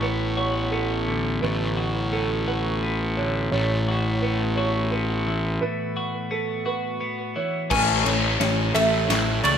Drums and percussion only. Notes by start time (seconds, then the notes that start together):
7.71 kick, snare, crash
8.06 ride
8.41 snare, ride
8.76 ride
9.10 snare, ride
9.45 ride